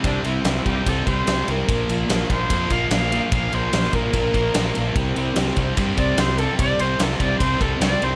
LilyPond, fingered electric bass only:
\new Staff \with { instrumentName = "Fingered electric bass" } { \clef bass \time 4/4 \key c \mixolydian \tempo 4 = 147 c,8 c,8 c,8 c,8 c,8 c,8 c,8 c,8 | bes,,8 bes,,8 bes,,8 bes,,8 f,8 bes,,8 bes,,4 | bes,,8 bes,,8 bes,,8 bes,,8 bes,,8 bes,,8 bes,,8 bes,,8 | c,8 c,8 c,8 c,8 g,8 c,8 c,4 |
c,8 c,8 c,8 c,8 c,8 c,8 c,8 c,8 | }